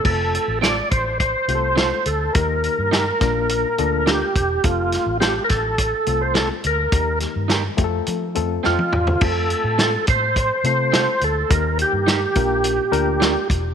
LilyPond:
<<
  \new Staff \with { instrumentName = "Tonewheel organ" } { \time 4/4 \key f \mixolydian \tempo 4 = 105 a'4 d''8 c''8 c''4. a'8 | bes'2. g'4 | f'4 g'16. bes'32 a'4~ a'16 c''16 a'8 bes'8~ | bes'8 r2 r8 f'4 |
a'4 a'8 c''4 c''4 a'8 | bes'8 g'2. r8 | }
  \new Staff \with { instrumentName = "Clean electric guitar" } { \time 4/4 \key f \mixolydian r4 <c' f' a'>8 r4. <c' f' a'>8 r8 | r4 <ees' g' bes'>8 r4. <d' f' bes'>8 r8 | r4 <c' f' a'>8 r4. <c' f' a'>8 r8 | r4 <ees' g' bes'>8 r4. <c' f' a'>8 r8 |
r4 <c' f' a'>8 r4. <c' f' a'>8 r8 | r4 <ees' g' bes'>8 r4. <d' f' bes'>8 r8 | }
  \new Staff \with { instrumentName = "Reed electric piano" } { \time 4/4 \key f \mixolydian << { r1 | ees4. bes,4. r4 | r1 | ees4. r4. <ees'' g''>8 <d'' f''>16 <a' c''>16~ |
<a' c''>16 r2. r8. | ees4. bes,4. r4 | } \\ { <a c' f' a'>4 r4. <a c' f' g' a'>4 r8 | <bes ees' g' bes'>4 r8 <bes d' f' bes'>4 <bes d' f' a'>4 r8 | <a c' f' a'>4 r4. <a c' f' a'>4 r8 | <bes ees' g' bes'>4 r8 <a c' f' g' a'>4 <a c' f' a'>4 r8 |
<a c' f' a'>4 r4. <a c' f' a'>4 r8 | <bes ees' g' bes'>4 r8 <bes d' f' bes'>4 <bes d' f' bes'>4 r8 | } >> }
  \new Staff \with { instrumentName = "Fingered electric bass" } { \clef bass \time 4/4 \key f \mixolydian f,,8. a,,8. a,,4 c,4 d,8 | ees,8. g,8. bes,,4 d,4 e,,8 | f,,8. a,,8. a,,4 c,4 d,8 | ees,8. g,8. f,8 f8 f,8 f,16 r16 e,8 |
f,8. a,8. a,4 c4 d,8 | ees,8. g,8. bes,,4 d,4 e,,8 | }
  \new DrumStaff \with { instrumentName = "Drums" } \drummode { \time 4/4 <cymc bd>8 hh8 <hh sn>8 <hh bd>8 <hh bd>8 hh8 <hh sn>8 hh8 | <hh bd>8 hh8 <hh sn>8 <hh bd sn>8 hh8 hh8 <hh sn>8 <hh bd>8 | <hh bd>8 <hh sn>8 <hh sn>8 <hh bd sn>8 <hh bd>8 hh8 <hh sn>8 hh8 | <hh bd>8 <hh sn>8 <hh sn>8 <hh bd>8 hh8 hh8 sn16 tommh16 toml16 tomfh16 |
<cymc bd>8 hh8 <hh sn>8 <hh bd>8 <hh bd>8 hh8 <hh sn>8 hh8 | <hh bd>8 hh8 <hh sn>8 <hh bd>8 hh8 hh8 <hh sn>8 <hh bd>8 | }
>>